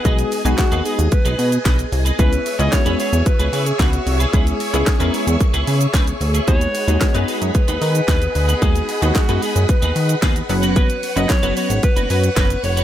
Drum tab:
HH |xxoxxxoxxxoxxxox|xxoxxxoxxxoxxxox|xxoxxxoxxxoxxxox|xxoxxxoxxxoxxxox|
SH |xxxxxxxxxxxxxxxx|xxxxxxxxxxxxxxxx|xxxxxxxxxxxxxxxx|xxxxxxxxxxxxxxxx|
CP |----x-------x---|----x-------x---|----x-------x---|----x-------x---|
SD |----o-------o---|----o-------o---|----o-------o---|----o-------o---|
BD |o---o---o---o---|o---o---o---o---|o---o---o---o---|o---o---o---o---|

HH |xxoxxxoxxxoxxxox|xxoxxxoxxxoxxxox|
SH |xxxxxxxxxxxxxxxx|xxxxxxxxxxxxxxxx|
CP |----x-------x---|----x-------x---|
SD |----o-------o---|----o-------o---|
BD |o---o---o---o---|o---o---o---o---|